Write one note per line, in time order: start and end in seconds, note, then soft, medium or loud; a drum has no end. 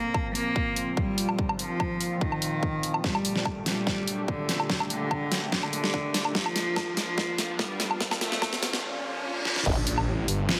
0.00 9.62 A#2 medium
0.00 3.01 F3 medium
0.00 0.27 A#3 loud
0.00 3.01 C4 medium
0.00 3.01 F4 medium
0.00 riser medium
0.14 kick loud
0.14 low woodblock medium
0.35 0.89 A#3 loud
0.35 open hi-hat medium
0.56 kick loud
0.76 closed hi-hat medium
0.97 1.51 G3 loud
0.97 kick loud
1.18 closed hi-hat medium
1.29 low woodblock medium
1.39 kick loud
1.49 low woodblock medium
1.59 2.13 F3 loud
1.59 closed hi-hat medium
1.80 kick loud
1.80 low woodblock medium
2.01 open hi-hat medium
2.21 2.96 D#3 medium
2.21 kick loud
2.32 low woodblock medium
2.42 closed hi-hat medium
2.63 kick loud
2.83 closed hi-hat medium
2.94 low woodblock medium
3.04 3.58 G3 loud
3.04 6.32 A3 medium
3.04 9.62 D4 medium
3.04 6.32 G4 medium
3.04 kick loud
3.04 snare medium
3.15 low woodblock medium
3.25 closed hi-hat medium
3.36 snare soft
3.45 kick loud
3.45 low woodblock medium
3.66 4.20 G3 loud
3.66 snare medium
3.66 open hi-hat medium
3.87 kick loud
3.87 snare medium
4.07 closed hi-hat medium
4.28 4.82 D3 medium
4.28 kick loud
4.49 snare medium
4.49 closed hi-hat medium
4.60 low woodblock medium
4.70 kick loud
4.70 snare medium
4.80 low woodblock medium
4.90 5.44 D3 loud
4.90 closed hi-hat medium
5.11 kick loud
5.11 low woodblock medium
5.32 snare medium
5.32 open hi-hat loud
5.52 6.27 D3 loud
5.52 kick loud
5.52 snare medium
5.63 low woodblock medium
5.73 closed hi-hat medium
5.84 snare medium
5.94 kick loud
6.14 snare medium
6.14 closed hi-hat medium
6.25 low woodblock medium
6.35 9.63 F3 medium
6.35 6.89 F3 loud
6.35 9.63 F4 medium
6.35 kick loud
6.35 snare medium
6.46 low woodblock medium
6.56 snare medium
6.56 closed hi-hat medium
6.76 kick loud
6.76 snare medium
6.76 low woodblock medium
6.97 7.51 F3 loud
6.97 snare medium
6.97 open hi-hat loud
7.18 kick loud
7.18 snare medium
7.38 snare medium
7.38 closed hi-hat medium
7.59 8.13 G3 loud
7.59 kick loud
7.59 snare medium
7.80 snare medium
7.80 closed hi-hat medium
7.91 low woodblock medium
8.01 kick loud
8.01 snare loud
8.11 snare medium
8.11 low woodblock medium
8.21 8.75 A3 loud
8.21 snare loud
8.21 closed hi-hat medium
8.32 snare medium
8.42 kick loud
8.42 snare loud
8.42 low woodblock medium
8.53 snare medium
8.63 snare loud
8.63 open hi-hat loud
8.73 snare medium
8.83 reverse cymbal medium
9.45 snare medium
9.56 snare medium
9.66 9.75 G1 loud
9.66 10.60 D3 medium
9.66 10.60 G3 medium
9.66 10.60 A#3 medium
9.66 10.60 G4 medium
9.66 kick loud
9.66 crash loud
9.66 impact medium
9.77 10.06 A#1 loud
9.87 closed hi-hat medium
9.98 low woodblock medium
10.07 10.27 A1 loud
10.28 10.60 G1 loud
10.28 closed hi-hat medium
10.49 snare loud